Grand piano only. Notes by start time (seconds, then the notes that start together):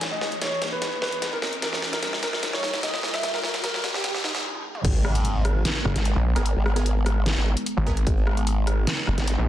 0.12 D#5
0.42 C#5
0.72 B4
1.02 B4
1.33 A#4
1.62 A#4
1.93 A#4
2.23 A#4
2.53 C#5
2.83 D#5
3.14 E5
3.34 A#4
3.64 A#4
3.94 G4
4.24 D#4